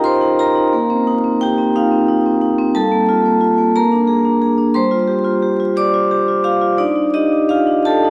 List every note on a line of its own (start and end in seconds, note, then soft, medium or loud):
0.00 0.69 C#4 medium
0.00 0.21 D#4 medium
0.00 0.04 F4 medium
0.00 0.76 G4 medium
0.00 0.40 A#4 medium
0.00 0.75 D#5 medium
0.00 0.76 F5 medium
0.00 0.75 G5 loud
0.00 0.39 A#5 loud
0.00 0.38 C6 loud
0.04 0.32 F4 medium
0.04 0.37 C5 medium
0.21 0.49 D#4 medium
0.39 0.66 F4 medium
0.39 1.37 A#4 medium
0.39 1.41 A#5 loud
0.56 0.73 D#4 medium
0.73 2.72 A#3 medium
0.90 1.17 C4 medium
1.07 1.34 D#4 medium
1.24 1.51 C4 medium
1.41 1.68 D#4 medium
1.41 1.73 G4 medium
1.41 1.75 G5 loud
1.58 1.85 C4 medium
1.75 2.02 D#4 medium
1.75 2.39 F4 medium
1.75 2.43 F5 medium
1.91 2.18 C4 medium
2.08 2.35 D#4 medium
2.26 2.52 C4 medium
2.41 2.69 D#4 medium
2.59 2.76 C4 medium
2.75 3.73 G3 medium
2.75 3.72 A4 medium
2.75 3.76 A5 loud
2.92 3.19 A#3 medium
3.09 3.36 F4 medium
3.25 3.52 A#3 medium
3.41 3.68 F4 medium
3.58 3.74 A#3 medium
3.76 4.73 A#3 medium
3.76 4.72 A#4 medium
3.76 4.76 A#5 loud
3.92 4.19 D4 medium
4.07 4.35 G#4 medium
4.25 4.52 D4 medium
4.42 4.69 G#4 medium
4.58 4.75 D4 medium
4.74 6.75 G3 medium
4.74 5.74 C5 medium
4.74 5.77 C6 loud
4.91 5.19 F4 medium
5.08 5.36 G4 medium
5.24 5.53 F4 medium
5.42 5.70 G4 medium
5.60 5.87 F4 medium
5.76 6.04 G4 medium
5.76 6.41 D5 medium
5.76 6.45 D6 loud
5.94 6.21 F4 medium
6.11 6.38 G4 medium
6.28 6.44 F4 medium
6.44 6.60 F4 medium
6.44 6.72 G4 medium
6.44 6.79 F5 medium
6.61 6.79 F4 medium
6.78 7.12 D4 medium
6.78 6.95 D#4 medium
6.78 7.14 D5 medium
6.96 7.14 D#4 medium
7.14 7.32 D#4 medium
7.14 7.42 G4 medium
7.14 7.50 D#5 medium
7.33 7.61 D#4 medium
7.49 7.84 F4 medium
7.49 7.78 G4 medium
7.49 7.85 F5 loud
7.67 7.96 D#4 medium
7.85 8.10 G4 medium
7.85 8.10 A4 medium
7.85 8.10 A5 loud
8.04 8.10 D#4 medium